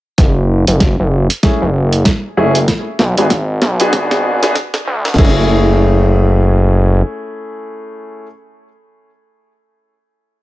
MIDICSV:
0, 0, Header, 1, 4, 480
1, 0, Start_track
1, 0, Key_signature, 3, "minor"
1, 0, Tempo, 625000
1, 143, Time_signature, 4, 2, 24, 8
1, 8008, End_track
2, 0, Start_track
2, 0, Title_t, "Grand piano"
2, 0, Program_c, 0, 0
2, 1102, Note_on_c, 0, 64, 79
2, 1103, Note_on_c, 0, 57, 84
2, 1103, Note_on_c, 0, 61, 77
2, 1103, Note_on_c, 0, 68, 93
2, 1229, Note_off_c, 0, 57, 0
2, 1229, Note_off_c, 0, 64, 0
2, 1229, Note_off_c, 0, 68, 0
2, 1230, Note_off_c, 0, 61, 0
2, 1821, Note_on_c, 0, 64, 82
2, 1822, Note_on_c, 0, 57, 92
2, 1823, Note_on_c, 0, 61, 82
2, 1823, Note_on_c, 0, 68, 98
2, 1949, Note_off_c, 0, 57, 0
2, 1949, Note_off_c, 0, 61, 0
2, 1949, Note_off_c, 0, 64, 0
2, 1949, Note_off_c, 0, 68, 0
2, 2443, Note_on_c, 0, 62, 72
2, 2444, Note_on_c, 0, 59, 72
2, 2444, Note_on_c, 0, 68, 84
2, 2445, Note_on_c, 0, 66, 70
2, 2532, Note_off_c, 0, 62, 0
2, 2533, Note_off_c, 0, 59, 0
2, 2533, Note_off_c, 0, 66, 0
2, 2533, Note_off_c, 0, 68, 0
2, 2922, Note_on_c, 0, 66, 86
2, 2922, Note_on_c, 0, 68, 102
2, 2923, Note_on_c, 0, 59, 91
2, 2923, Note_on_c, 0, 62, 86
2, 3369, Note_off_c, 0, 66, 0
2, 3369, Note_off_c, 0, 68, 0
2, 3370, Note_off_c, 0, 59, 0
2, 3370, Note_off_c, 0, 62, 0
2, 3404, Note_on_c, 0, 59, 97
2, 3404, Note_on_c, 0, 66, 89
2, 3404, Note_on_c, 0, 68, 104
2, 3405, Note_on_c, 0, 62, 89
2, 3493, Note_off_c, 0, 59, 0
2, 3493, Note_off_c, 0, 62, 0
2, 3493, Note_off_c, 0, 66, 0
2, 3493, Note_off_c, 0, 68, 0
2, 3983, Note_on_c, 0, 61, 80
2, 3984, Note_on_c, 0, 57, 87
2, 3984, Note_on_c, 0, 64, 82
2, 3984, Note_on_c, 0, 68, 93
2, 6342, Note_off_c, 0, 57, 0
2, 6342, Note_off_c, 0, 61, 0
2, 6343, Note_off_c, 0, 64, 0
2, 6343, Note_off_c, 0, 68, 0
2, 8008, End_track
3, 0, Start_track
3, 0, Title_t, "Analog synth bass"
3, 0, Program_c, 1, 38
3, 139, Note_on_c, 1, 30, 92
3, 500, Note_off_c, 1, 30, 0
3, 523, Note_on_c, 1, 30, 92
3, 741, Note_off_c, 1, 30, 0
3, 766, Note_on_c, 1, 30, 94
3, 983, Note_off_c, 1, 30, 0
3, 1245, Note_on_c, 1, 30, 95
3, 1568, Note_off_c, 1, 30, 0
3, 1823, Note_on_c, 1, 30, 94
3, 2047, Note_off_c, 1, 30, 0
3, 2304, Note_on_c, 1, 35, 94
3, 2422, Note_off_c, 1, 35, 0
3, 2445, Note_on_c, 1, 32, 95
3, 2768, Note_off_c, 1, 32, 0
3, 2784, Note_on_c, 1, 35, 100
3, 3008, Note_off_c, 1, 35, 0
3, 3021, Note_on_c, 1, 32, 99
3, 3486, Note_off_c, 1, 32, 0
3, 3744, Note_on_c, 1, 38, 99
3, 3968, Note_off_c, 1, 38, 0
3, 3983, Note_on_c, 1, 30, 95
3, 5392, Note_off_c, 1, 30, 0
3, 8008, End_track
4, 0, Start_track
4, 0, Title_t, "Drums"
4, 138, Note_on_c, 9, 38, 48
4, 138, Note_on_c, 9, 42, 52
4, 140, Note_on_c, 9, 36, 91
4, 215, Note_off_c, 9, 38, 0
4, 215, Note_off_c, 9, 42, 0
4, 217, Note_off_c, 9, 36, 0
4, 518, Note_on_c, 9, 42, 69
4, 595, Note_off_c, 9, 42, 0
4, 618, Note_on_c, 9, 38, 51
4, 618, Note_on_c, 9, 42, 53
4, 620, Note_on_c, 9, 36, 91
4, 695, Note_off_c, 9, 38, 0
4, 695, Note_off_c, 9, 42, 0
4, 697, Note_off_c, 9, 36, 0
4, 999, Note_on_c, 9, 42, 66
4, 1075, Note_off_c, 9, 42, 0
4, 1099, Note_on_c, 9, 38, 58
4, 1099, Note_on_c, 9, 42, 49
4, 1101, Note_on_c, 9, 36, 92
4, 1176, Note_off_c, 9, 38, 0
4, 1176, Note_off_c, 9, 42, 0
4, 1177, Note_off_c, 9, 36, 0
4, 1479, Note_on_c, 9, 42, 63
4, 1556, Note_off_c, 9, 42, 0
4, 1576, Note_on_c, 9, 38, 64
4, 1576, Note_on_c, 9, 42, 53
4, 1581, Note_on_c, 9, 36, 95
4, 1653, Note_off_c, 9, 38, 0
4, 1653, Note_off_c, 9, 42, 0
4, 1658, Note_off_c, 9, 36, 0
4, 1959, Note_on_c, 9, 42, 70
4, 2035, Note_off_c, 9, 42, 0
4, 2058, Note_on_c, 9, 38, 72
4, 2058, Note_on_c, 9, 42, 56
4, 2061, Note_on_c, 9, 36, 93
4, 2135, Note_off_c, 9, 38, 0
4, 2135, Note_off_c, 9, 42, 0
4, 2138, Note_off_c, 9, 36, 0
4, 2297, Note_on_c, 9, 38, 77
4, 2374, Note_off_c, 9, 38, 0
4, 2438, Note_on_c, 9, 42, 71
4, 2515, Note_off_c, 9, 42, 0
4, 2536, Note_on_c, 9, 38, 83
4, 2536, Note_on_c, 9, 42, 56
4, 2542, Note_on_c, 9, 36, 96
4, 2613, Note_off_c, 9, 38, 0
4, 2613, Note_off_c, 9, 42, 0
4, 2618, Note_off_c, 9, 36, 0
4, 2778, Note_on_c, 9, 38, 86
4, 2854, Note_off_c, 9, 38, 0
4, 2916, Note_on_c, 9, 42, 67
4, 2993, Note_off_c, 9, 42, 0
4, 3017, Note_on_c, 9, 38, 92
4, 3017, Note_on_c, 9, 42, 54
4, 3021, Note_on_c, 9, 36, 103
4, 3093, Note_off_c, 9, 38, 0
4, 3093, Note_off_c, 9, 42, 0
4, 3098, Note_off_c, 9, 36, 0
4, 3158, Note_on_c, 9, 38, 86
4, 3235, Note_off_c, 9, 38, 0
4, 3400, Note_on_c, 9, 38, 84
4, 3400, Note_on_c, 9, 42, 68
4, 3477, Note_off_c, 9, 38, 0
4, 3477, Note_off_c, 9, 42, 0
4, 3499, Note_on_c, 9, 38, 99
4, 3499, Note_on_c, 9, 42, 55
4, 3501, Note_on_c, 9, 36, 100
4, 3575, Note_off_c, 9, 38, 0
4, 3575, Note_off_c, 9, 42, 0
4, 3578, Note_off_c, 9, 36, 0
4, 3639, Note_on_c, 9, 38, 90
4, 3715, Note_off_c, 9, 38, 0
4, 3879, Note_on_c, 9, 38, 99
4, 3900, Note_off_c, 9, 38, 0
4, 3900, Note_on_c, 9, 38, 76
4, 3947, Note_off_c, 9, 38, 0
4, 3947, Note_on_c, 9, 38, 62
4, 3981, Note_off_c, 9, 38, 0
4, 3981, Note_on_c, 9, 38, 51
4, 3981, Note_on_c, 9, 49, 91
4, 3982, Note_on_c, 9, 36, 114
4, 4029, Note_off_c, 9, 38, 0
4, 4029, Note_on_c, 9, 38, 43
4, 4058, Note_off_c, 9, 49, 0
4, 4059, Note_off_c, 9, 36, 0
4, 4062, Note_off_c, 9, 38, 0
4, 4062, Note_on_c, 9, 38, 34
4, 4139, Note_off_c, 9, 38, 0
4, 8008, End_track
0, 0, End_of_file